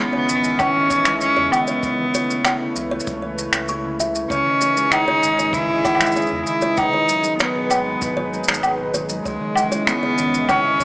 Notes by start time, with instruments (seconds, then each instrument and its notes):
Already playing: harp D#3 E3 G#3 B3 C#4, ambient pad C#4 G#4 B4 D#5 E5
0.00 cello B3
0.13 harp C#3, kalimba C#5
0.29 sub bass G#1, harp D#3, shaker
0.44 harp E3, shaker
0.59 harp C#3, cello C#4, kalimba C#5, kick, low woodblock, shaker
0.75 harp D#3
0.90 harp E3, kalimba C#5, kick, shaker
1.05 harp G#3, finger snap, shaker
1.21 cello C#4, harp C#4, shaker
1.37 sub bass E2, harp C#3, kalimba C#5
1.52 harp D#3, cello B3, low woodblock, shaker
1.67 harp E3, kalimba C#5, shaker
1.83 harp C#3, ambient pad A3, kick, shaker
1.93 ambient pad B4
1.99 harp E3, ambient pad C#5
2.14 harp A3, kalimba C#5, shaker
2.30 harp C#4, shaker
2.45 harp E4, kalimba C#5, finger snap, low woodblock, shaker
2.60 harp C#3
2.76 sub bass C#2, harp E3, shaker
2.91 harp A3, kalimba C#5
3.00 shaker
3.07 sub bass C#2, harp C#3, kick, shaker
3.22 harp E3, kalimba C#5
3.38 harp A3, shaker
3.53 sub bass C#2, harp C#4, finger snap, shaker
3.68 harp E4, kalimba C#6, shaker
3.84 harp C#3
3.99 harp E3, kalimba E5, shaker
4.15 harp A3, shaker
4.30 sub bass C#2, harp C#3, cello C#4, ambient pad C#4, kalimba C#5, kick, shaker
4.40 ambient pad G#4 G#5
4.46 harp D#3, ambient pad D#5
4.61 harp E3, kalimba C#5, shaker
4.76 harp G#3, shaker
4.92 harp C#4, cello D#4, finger snap, low woodblock, shaker
5.08 harp C#3, kalimba C#5
5.23 sub bass G#1, harp D#3, shaker
5.38 harp E3, kalimba C#5, shaker
5.53 harp C#3, cello E4, kick, shaker
5.69 harp D#3
5.84 harp E3, kalimba C#5, kick, low woodblock, shaker
5.95 low woodblock
6.00 harp G#3, finger snap, shaker
6.05 low woodblock, shaker
6.12 harp C#4, shaker
6.16 kalimba C#5, shaker
6.22 shaker
6.27 shaker
6.31 sub bass E2, harp C#3
6.46 harp D#3, cello E4, shaker
6.61 harp E3, kalimba C#5, shaker
6.77 harp B2, ambient pad G#3, cello D#4, kick, low woodblock, shaker
6.92 harp D#3, ambient pad B4, kalimba C#5
7.07 harp F#3, ambient pad D#4, shaker
7.23 harp G#3, shaker
7.39 harp B3, cello B3, kalimba C#5, finger snap, shaker
7.54 harp B2
7.70 sub bass G#1, harp D#3, kalimba C#5, low woodblock, shaker
7.85 harp F#3
8.01 sub bass G#1, harp B2, kick, shaker
8.16 harp D#3, kalimba C#5
8.31 harp F#3, shaker
8.44 harp G#3, shaker
8.48 sub bass G#1, kalimba C#5, finger snap, shaker
8.54 shaker
8.62 harp B3, low woodblock, shaker
8.78 harp B2
8.94 harp D#3, kalimba C#5, shaker
9.09 harp F#3, shaker
9.25 sub bass C#2, harp C#3, cello G#3, ambient pad C#4, kalimba C#5, kick, shaker
9.41 harp D#3
9.56 harp E3, low woodblock, shaker
9.68 harp G#3, ambient pad D#5
9.72 kalimba C#5, shaker
9.87 cello B3, harp C#4, finger snap, shaker
10.02 harp C#3, kalimba C#5, ambient pad E5
10.18 sub bass G#1, harp D#3, shaker
10.33 harp E3, shaker
10.49 harp C#3, cello C#4, kalimba C#5, kick, low woodblock, shaker
10.64 harp D#3
10.80 harp E3, kalimba C#5, kick, shaker